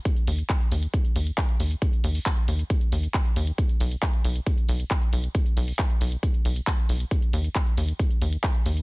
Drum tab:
HH |xxoxxxoxxxoxxxox|xxooxxoxxxoxxxox|xxoxxxoxxxoxxxox|xxooxxoxxxoxxxox|
CP |----x-------x---|----x-------x---|----x-------x---|----x-------x---|
BD |o---o---o---o---|o---o---o---o---|o---o---o---o---|o---o---o---o---|

HH |xxoxxxoxxxoxxxox|
CP |----x-------x---|
BD |o---o---o---o---|